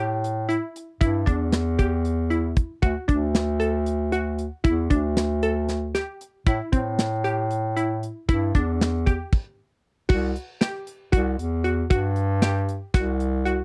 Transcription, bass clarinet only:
0.00 0.59 A2 medium
1.01 1.24 G2 medium
1.27 2.65 E2 medium
2.83 2.94 D2 medium
3.09 4.47 D2 medium
4.64 4.88 E2 medium
4.90 6.04 D2 medium
6.47 6.58 A2 medium
6.73 8.10 A2 medium
8.29 8.52 G2 medium
8.55 9.23 E2 medium
10.10 10.33 C2 medium
11.13 11.36 C2 medium
11.38 11.85 E2 medium
11.90 12.82 G2 loud
12.94 13.63 C2 medium

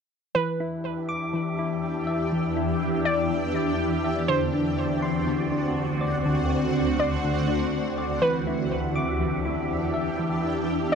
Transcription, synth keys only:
0.35 1.32 E3 medium
0.60 1.57 E4 medium
1.09 2.56 D6 loud
1.33 2.31 E3 medium
1.59 2.56 E4 medium
2.07 3.55 E5 medium
2.32 3.29 E3 medium
2.57 3.54 E4 medium
3.06 4.29 D6 medium
3.30 4.29 E3 medium
3.55 4.29 E4 medium
4.04 4.29 E5 medium
4.29 5.26 D3 loud
4.54 5.51 D4 medium
5.02 6.50 C6 medium
5.27 6.24 D3 medium
5.52 6.49 D4 medium
6.01 7.48 D5 medium
6.25 7.23 D3 medium
6.50 7.47 D4 medium
6.99 8.22 C6 medium
7.25 8.23 D3 medium
7.48 8.22 D4 medium
7.98 8.22 D5 medium
8.22 9.19 E3 medium
8.47 9.44 E4 medium
8.96 10.43 D6 loud
9.20 10.18 E3 medium
9.45 10.42 E4 medium
9.94 10.95 E5 medium
10.19 10.95 E3 medium
10.44 10.95 E4 medium

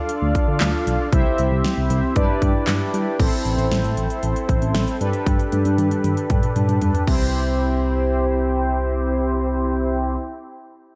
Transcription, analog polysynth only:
0.00 1.09 D4 medium
0.00 1.09 F4 medium
0.00 1.09 A4 medium
0.00 1.09 D5 medium
0.00 1.09 F5 medium
1.13 2.14 C4 medium
1.13 2.14 E4 medium
1.13 2.14 G4 medium
1.13 2.14 C5 medium
1.13 2.14 E5 medium
2.16 3.17 D4 medium
2.16 3.17 E4 medium
2.16 3.17 G4 medium
2.16 3.17 B4 medium
2.16 3.17 D5 medium
3.20 4.97 C4 medium
3.20 4.97 E4 medium
3.20 4.97 A4 medium
3.20 4.97 C5 medium
5.01 7.03 D4 medium
5.01 7.03 G4 medium
5.01 7.03 A4 medium
5.01 7.03 B4 medium
7.07 10.16 C4 medium
7.07 10.16 E4 medium
7.07 10.15 G4 medium
7.07 10.16 C5 medium

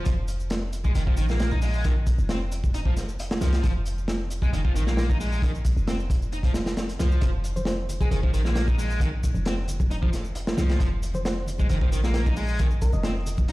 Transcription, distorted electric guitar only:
0.05 0.13 F3 medium
0.84 0.92 G#3 medium
0.95 1.03 D#3 medium
1.07 1.14 F3 medium
1.17 1.25 D#3 loud
1.29 1.51 A#3 medium
1.52 1.59 D#4 medium
1.62 1.84 G#3 medium
1.85 1.92 D#3 medium
2.30 2.37 C4 medium
2.74 2.79 D#4 medium
2.86 2.93 F3 medium
3.41 3.63 F3 medium
3.64 3.71 F3 medium
4.43 4.50 G#3 medium
4.53 4.61 D#3 medium
4.65 4.72 F3 medium
4.76 4.83 D#3 medium
4.87 5.08 A#3 medium
5.09 5.17 D#4 medium
5.20 5.42 G#3 medium
5.43 5.50 D#3 medium
5.88 5.95 C4 medium
6.33 6.37 D#4 medium
6.45 6.51 F3 medium
7.00 7.21 F3 medium
7.22 7.29 F3 medium
8.01 8.08 G#3 medium
8.12 8.19 D#3 medium
8.23 8.30 F3 medium
8.34 8.41 D#3 loud
8.45 8.67 A#3 medium
8.68 8.75 D#4 medium
8.79 9.00 G#3 medium
9.01 9.08 D#3 medium
9.46 9.53 C4 medium
9.91 9.95 D#4 medium
10.02 10.09 F3 medium
10.58 10.79 F3 medium
10.80 10.88 F3 medium
11.59 11.66 G#3 medium
11.70 11.77 D#3 medium
11.82 11.89 F3 medium
11.92 12.00 D#3 loud
12.04 12.25 A#3 medium
12.27 12.34 D#4 medium
12.37 12.58 G#3 loud
12.60 12.67 D#3 medium
13.05 13.12 C4 medium

